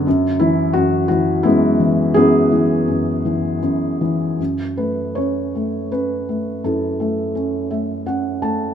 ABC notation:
X:1
M:3/4
L:1/8
Q:1/4=84
K:Emix
V:1 name="Felt piano"
z E F F [G,B,E]2 | [B,EG]4 z2 | z B c2 B2 | [EA]4 z2 |]
V:2 name="Felt piano" clef=bass
F,, E, F,, E, F,, E, | F,, E, F,, E, F,, E, | F,, A, C A, C A, | F,, A, C [A,e] [Cf] [A,a] |]